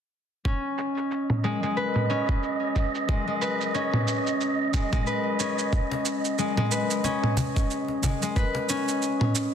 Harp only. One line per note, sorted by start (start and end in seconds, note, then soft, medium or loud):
0.45 2.09 C#4 medium
1.44 1.62 G#3 medium
1.63 3.07 G#3 medium
1.77 3.41 B4 medium
2.10 3.74 C#4 medium
3.09 3.26 G#3 medium
3.27 4.72 G#3 medium
3.41 5.06 B4 medium
3.74 5.39 C#4 medium
4.74 4.91 G#3 medium
4.93 5.78 G#3 medium
5.07 6.71 B4 medium
5.40 7.04 C#4 medium
6.38 6.56 G#3 medium
6.58 8.02 G#3 medium
6.72 8.36 B4 medium
7.04 8.69 C#4 medium
8.03 8.21 G#3 medium
8.22 8.41 G#3 medium
8.36 9.54 B4 medium
8.69 9.54 C#4 medium